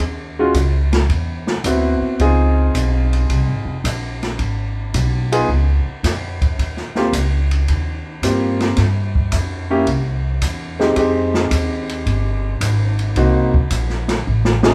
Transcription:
0.00 D#2, kick, ride
0.39 G#3 C#4 F4 F#4
0.54 C#2, kick, hi-hat pedal, ride
0.93 snare, ride
1.09 E2, kick, ride
1.47 snare
1.64 D2 B3 C4 E4 F#4, kick, hi-hat pedal, ride
2.01 muted upright bass stroke
2.19 C#2 C4 D#4 F4 G#4, kick, ride
2.74 B1, kick, hi-hat pedal, ride
3.13 ride
3.30 C2, kick, ride
3.48 G#1
3.65 F1
3.84 A#1, kick, hi-hat pedal, ride
4.23 snare, ride
4.39 G#1, kick, ride
4.94 B1, kick, hi-hat pedal, ride
5.32 B3 D#4 F4 G#4, ride
5.48 C#2, kick
5.86 muted upright bass stroke
6.03 F2, kick, snare, hi-hat pedal, ride
6.42 kick, ride
6.59 D#2, kick, ride
6.77 snare
6.95 A#3 C4 F4 G4, snare
7.13 C#2, kick, hi-hat pedal, ride
7.51 ride
7.68 D#2, kick, ride
8.22 G2 A#3 C4 F4 G4, kick, hi-hat pedal, ride
8.60 snare, ride
8.76 G2, kick, snare, ride
9.15 kick
9.32 F2, kick, hi-hat pedal, ride
9.70 A#3 C#4 E4 G4
9.87 C2, kick, ride
10.42 E2, kick, hi-hat pedal, ride
10.79 G#3 C4 D#4 G4, snare
10.96 F2 G#3 C4 D#4 G4, kick, ride
11.34 snare
11.51 D#2, kick, hi-hat pedal, ride
11.89 ride
12.06 G1, kick, ride
12.61 G#1, kick, hi-hat pedal, ride
12.99 ride
13.16 C2 A#3 C4 D#4 F#4, kick, ride
13.54 kick
13.70 A#1, kick, hi-hat pedal, ride
13.90 snare
14.08 snare, ride
14.27 A1
14.45 snare
14.63 A3 C#4 D#4 G#4, snare

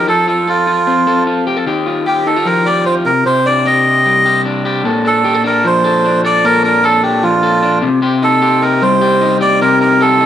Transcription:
Already playing: D#4
0.07 F3 A4
0.27 F4 A4
0.47 F4 A4
0.67 F4
0.87 C4
1.07 A4
1.27 F4
1.47 G4
1.57 A4
1.66 D#3 G4
1.86 F4
2.06 G4
2.27 D#4 A4
2.36 F4
2.45 F3 A#4
2.66 G4 D5
2.86 F4 C5
3.05 C3 A#4
3.26 C3 G4 C5
3.46 D4 D5
3.65 G4 D#5
4.05 G3
4.26 G4
4.45 D4
4.65 G4
4.85 A#2 A4
5.05 D4 A4
5.24 G4
5.35 A4
5.44 D4 A#4
5.64 F3 C5
5.84 A4
6.04 D4
6.25 A4 D5
6.44 A#2 A4 A#4
6.64 D4 A#4
6.84 A4
7.03 D4 G4
7.23 F3 F4
7.43 A4
7.63 D4
7.82 C3
8.02 C3 G4
8.22 D#4 A4
8.42 G4
8.62 D#4 A#4
8.82 G3 C5
9.01 G4
9.21 D#4
9.41 G4 D5
9.61 C3 G4 A#4
9.81 D#4 A#4
10.01 G4 A4
10.20 D#4

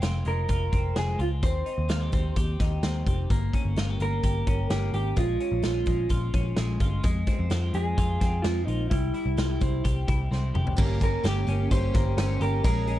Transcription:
Already playing: G#3 C4
0.02 F1 F4, snare, closed hi-hat
0.25 F1 G#3 A#4, closed hi-hat
0.49 F1 F4, kick, closed hi-hat
0.73 F1 C4, kick, closed hi-hat
0.96 F1 G#3 G#4, snare, closed hi-hat
1.19 C#2 F4, closed hi-hat
1.43 D#2 C4 C5, kick, closed hi-hat
1.66 D#4, closed hi-hat
1.78 D#2
1.89 D#2 F4, snare, closed hi-hat
2.01 G4
2.12 D#2 C4, kick, closed hi-hat
2.36 D#2 G4, kick, closed hi-hat
2.60 D#2 D#4, kick, snare, closed hi-hat
2.83 D#2 C4, snare, closed hi-hat
3.06 F1 G4, kick, closed hi-hat
3.30 G1 A#3, kick, closed hi-hat
3.53 C#4, kick, closed hi-hat
3.65 G1
3.76 G1 F4, snare, closed hi-hat
3.89 G4
3.99 G1 A#3 A#4, closed hi-hat
4.23 G1 G4, kick, closed hi-hat
4.47 G1 C#4, kick, closed hi-hat
4.70 G1 A#3 G4, snare, closed hi-hat
4.93 G#1 G4, closed hi-hat
5.16 A#1 G#3 F4, kick, closed hi-hat
5.40 C#4, closed hi-hat
5.52 A#1
5.62 A#1 F4, snare, closed hi-hat
5.86 A#1 G#3, kick, closed hi-hat
6.09 A#1 F4, kick, closed hi-hat
6.33 A#1 C#4, kick, closed hi-hat
6.57 A#1 G#3, snare, closed hi-hat
6.80 G1 F4, kick, closed hi-hat
7.03 F2 G#3, kick, closed hi-hat
7.27 C4, kick, closed hi-hat
7.39 F2
7.50 F2 F4, snare, closed hi-hat
7.74 F2 G#3 G#4, closed hi-hat
7.98 F2 F4, kick, closed hi-hat
8.21 F2 C4, kick, snare, closed hi-hat
8.42 F2 G#3 F4, snare, closed hi-hat
8.65 A#1 D#4 F4, closed hi-hat
8.90 C2 G3 E4, kick, closed hi-hat
9.14 E4, closed hi-hat
9.26 C2
9.37 C2 F4, snare, closed hi-hat
9.50 G4
9.61 C2 C4, kick, closed hi-hat
9.84 C2 G4, kick, closed hi-hat
10.08 C2 E4, kick, closed hi-hat
10.31 C2 C4, snare
10.54 F1 G4, mid tom
10.67 floor tom
10.76 G1 G3 A#3 C#4 G4, kick, crash
10.99 A#3 C#4 G4, kick, closed hi-hat
11.03 A#4
11.23 G1 G3 A#3 C#4 G4, snare, closed hi-hat
11.47 G1 A#3 C#4 G4, closed hi-hat
11.71 G1 G3 A#3 C#4 G4 C5, kick, closed hi-hat
11.94 G1 A#3 C#4 G4, kick, snare, closed hi-hat
12.17 G1 G3 A#3 C#4 G4, snare, closed hi-hat
12.41 G1 A#3 C#4 G4 A#4, closed hi-hat
12.64 A#1 A#2 F3 G#3 C#4 G#4 A#4, kick, closed hi-hat
12.87 G#3 C#4 G#4, closed hi-hat

